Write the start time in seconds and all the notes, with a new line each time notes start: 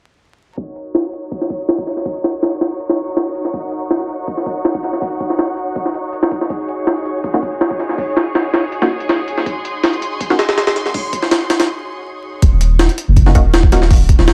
0.57 D#4 F#4 A#4 C#5 C#6, kick, closed hi-hat
0.76 closed hi-hat
0.95 snare, closed hi-hat
1.04 closed hi-hat
1.13 closed hi-hat
1.32 kick, closed hi-hat
1.41 snare
1.50 kick, closed hi-hat
1.69 snare, closed hi-hat
1.78 kick
1.87 snare, closed hi-hat
1.97 snare
2.06 kick, open hi-hat
2.24 snare, closed hi-hat
2.43 snare, closed hi-hat
2.61 snare, closed hi-hat
2.80 closed hi-hat
2.89 snare, closed hi-hat
3.08 closed hi-hat
3.17 snare, closed hi-hat
3.35 closed hi-hat
3.45 snare
3.53 F#5, kick, closed hi-hat
3.72 closed hi-hat
3.91 snare, closed hi-hat
4.00 closed hi-hat
4.09 closed hi-hat
4.28 kick, closed hi-hat
4.37 snare
4.46 kick, closed hi-hat
4.65 snare, closed hi-hat
4.74 kick
4.83 snare, closed hi-hat
4.93 snare
5.02 kick, open hi-hat
5.20 kick, closed hi-hat
5.30 snare
5.39 snare, closed hi-hat
5.57 closed hi-hat
5.76 kick, closed hi-hat
5.86 snare
5.94 closed hi-hat
6.13 closed hi-hat
6.23 snare
6.31 kick, closed hi-hat
6.41 snare
6.50 G#4 C#5 D#6, kick, closed hi-hat
6.68 closed hi-hat
6.87 snare, closed hi-hat
6.97 closed hi-hat
7.05 closed hi-hat
7.24 kick, closed hi-hat
7.34 A#3 C#4 D#4 F#4, snare
7.43 kick, closed hi-hat
7.61 snare, closed hi-hat
7.71 kick
7.80 snare, closed hi-hat
7.89 snare
7.98 kick, open hi-hat
8.16 snare, closed hi-hat
8.35 snare, closed hi-hat
8.54 snare, closed hi-hat
8.72 closed hi-hat
8.82 A#3 C#4 D#4 F#4, snare, closed hi-hat
9.00 closed hi-hat
9.09 snare, closed hi-hat
9.28 closed hi-hat
9.38 snare
9.46 C6, kick, closed hi-hat
9.65 closed hi-hat
9.83 snare, closed hi-hat
9.93 closed hi-hat
10.02 closed hi-hat
10.20 kick, closed hi-hat
10.30 A#3 C#4 D#4 F#4, snare
10.39 snare, closed hi-hat
10.49 snare, closed hi-hat
10.58 snare, closed hi-hat
10.67 snare, closed hi-hat
10.76 snare, closed hi-hat
10.86 snare
10.94 kick, open hi-hat
11.13 kick, closed hi-hat
11.22 snare
11.31 snare, closed hi-hat
11.50 snare, closed hi-hat
11.60 snare, closed hi-hat
12.42 D#1, kick, closed hi-hat
12.61 closed hi-hat
12.79 snare, closed hi-hat
12.89 closed hi-hat
12.98 closed hi-hat
13.08 F#1
13.16 kick, closed hi-hat
13.26 A#3 C#4 D#4 F#4, snare
13.35 D#1 A#3 C#4 D#4 F#4, kick, closed hi-hat
13.54 snare, closed hi-hat
13.63 kick
13.72 A#3 C#4 D#4 F#4, snare, closed hi-hat
13.82 snare
13.91 kick, open hi-hat
14.09 kick, closed hi-hat
14.19 D#1, snare
14.28 snare, closed hi-hat